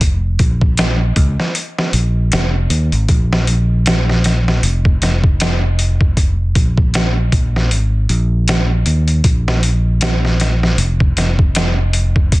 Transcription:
Already playing: F1
0.01 kick, closed hi-hat
0.39 A#1, kick, closed hi-hat
0.61 kick
0.77 snare, closed hi-hat
1.16 C#2, kick, closed hi-hat
1.40 snare
1.55 closed hi-hat
1.78 snare
1.93 A#1, closed hi-hat
2.32 F1, snare, closed hi-hat
2.70 D#2, closed hi-hat
2.92 G#1, closed hi-hat
3.08 A#1, kick, closed hi-hat
3.33 snare
3.47 closed hi-hat
3.86 snare, closed hi-hat
4.09 snare
4.24 snare, closed hi-hat
4.48 snare
4.63 F1, closed hi-hat
4.85 kick
5.02 F1, snare, closed hi-hat
5.24 kick
5.40 snare, closed hi-hat
5.79 closed hi-hat
6.01 kick
6.17 kick, closed hi-hat
6.55 A#1, kick, closed hi-hat
6.77 kick
6.94 snare, closed hi-hat
7.32 A#1, kick, closed hi-hat
7.56 snare
7.71 G#1, closed hi-hat
8.09 A#1, closed hi-hat
8.48 snare, closed hi-hat
8.86 D#2, closed hi-hat
9.08 closed hi-hat
9.24 A#1, kick, closed hi-hat
9.48 snare
9.63 closed hi-hat
10.01 snare, closed hi-hat
10.25 snare
10.40 snare, closed hi-hat
10.63 snare
10.78 F1, closed hi-hat
11.00 kick
11.17 F1, snare, closed hi-hat
11.39 kick
11.55 snare, closed hi-hat
11.93 closed hi-hat
12.16 kick
12.32 kick, closed hi-hat

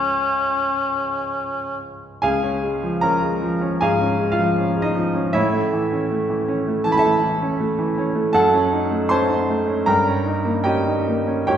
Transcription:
Already playing: C#2 F3 G#3 C#4
2.22 C#2 G#4 F5 G#5
2.43 C#4
2.63 G#3
2.83 F3
3.01 C#4 A#4 A#5
3.22 G#3
3.42 F3
3.61 C#4
3.81 G#2 G#4 F5 G#5
4.01 C#4
4.19 G#3
4.32 F4 F5
4.39 F3
4.58 C#4
4.76 G#3
4.82 D#4 D#5
4.95 F3
5.15 C#4
5.33 A2 E4 C#5 E5
5.53 A3
5.73 E3
5.92 C#4
6.11 A3
6.30 E3
6.48 C#4
6.68 A3
6.84 E3 A5
6.92 B5
6.97 A4 E5 A5
7.05 A3
7.23 E3
7.42 C#4
7.60 A3
7.79 E3
7.98 C#4
8.15 A3
8.33 F#2 A4 F#5 A5
8.54 C#4
8.73 D#4
8.91 A3
9.09 C#4 C5 A5 C6
9.29 D#4
9.48 A3
9.68 C#4
9.86 G2 A#4 G5 A#5
10.07 C#4
10.26 D#4
10.45 A#3
10.64 C#4 G4 D#5 G5
10.87 D#4
11.07 A#3
11.27 C#4
11.47 G#2 G4 C#5 G5

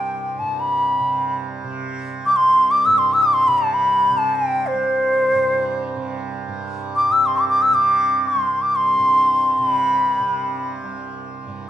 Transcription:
Already playing: C2 G2 C3 G5
0.39 G2 A5
0.59 B5
1.00 C3
1.64 C3
2.26 C2 D6
2.36 C6
2.71 D6
2.85 G2 E6
2.98 C6
3.13 E6
3.22 D6
3.33 C6
3.47 C3 B5
3.58 A5
3.74 B5
4.10 C3
4.17 A5
4.35 G5
4.67 C5
4.72 C2
5.33 G2
5.96 C3
6.47 G2
6.96 D6
7.10 C3 E6
7.26 C6
7.37 D6
7.49 D6
7.62 E6
7.71 C3 D6
8.28 C6
8.35 C2
8.62 D6
8.75 C6
8.98 G2
9.58 C3 C6
9.69 B5
10.19 C3
10.83 C2
11.47 G2

